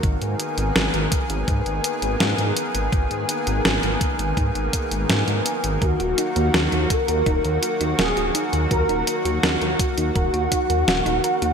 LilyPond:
<<
  \new Staff \with { instrumentName = "Analog synth lead" } { \time 4/4 \key ees \minor \tempo 4 = 83 r1 | r1 | ges'4. bes'4. aes'8 r8 | bes'8 r8 ges'2. | }
  \new Staff \with { instrumentName = "Synth arpeggio sound" } { \time 4/4 \key ees \minor r1 | r1 | bes'16 ges'16 ees'16 bes'16 ges'16 ees'16 bes'16 ges'16 ees'16 bes'16 ges'16 ees'16 bes'16 ges'16 ees'16 bes'16 | ges'16 ees'16 bes'16 ges'16 ees'16 bes'16 ges'16 ees'16 bes'16 ges'16 ees'16 bes'16 ges'16 ees'16 bes'16 ges'16 | }
  \new Staff \with { instrumentName = "Analog synth pad" } { \time 4/4 \key ees \minor << { <bes ces' aes'>1~ | <bes ces' aes'>1 | <ges ges'>1~ | <ges ges'>1 | } \\ { ees1~ | ees1~ | ees1~ | ees1 | } >> }
  \new Staff \with { instrumentName = "Detuned saw bass" } { \clef bass \time 4/4 \key ees \minor aes,,16 aes,16 r16 aes,,16 aes,,16 aes,,16 r16 aes,,16 aes,16 aes,,16 r16 aes,,16 aes,16 aes,16 r16 aes,,16 | aes,,16 aes,16 r16 aes,,16 aes,,16 aes,,16 r16 aes,,16 aes,16 aes,,16 r16 aes,,16 aes,16 aes,16 r16 aes,,16 | ees,16 ees,,16 r16 ees,16 ees,16 ees,16 r16 ees,16 ees,,16 ees,16 r16 ees,16 ees,,16 ees,,16 r16 ees,16 | ees,16 ees,,16 r16 ees,16 ees,16 ees,16 r16 ees,16 ees,,16 ees,16 r16 ees,16 ees,,16 ees,,16 r16 ees,16 | }
  \new DrumStaff \with { instrumentName = "Drums" } \drummode { \time 4/4 <hh bd>16 hh16 hh16 hh16 <hh sn>16 hh16 <hh bd>16 hh16 <hh bd>16 hh16 hh16 hh16 <hh sn>16 hh16 hh16 hh16 | <hh bd>16 hh16 hh16 hh16 <hh sn>16 hh16 <hh bd>16 hh16 <hh bd>16 hh16 <hh bd>16 hh16 <hh sn>16 hh16 hh16 hh16 | <hh bd>16 hh16 hh16 hh16 <hh sn>16 hh16 <hh bd>16 hh16 <hh bd>16 hh16 hh16 hh16 <hh sn>16 hh16 hh16 hh16 | <hh bd>16 hh16 hh16 hh16 <hh sn>16 hh16 <hh bd>16 hh16 <hh bd>16 hh16 <hh bd>16 hh16 <hh sn>16 hh16 hh16 hh16 | }
>>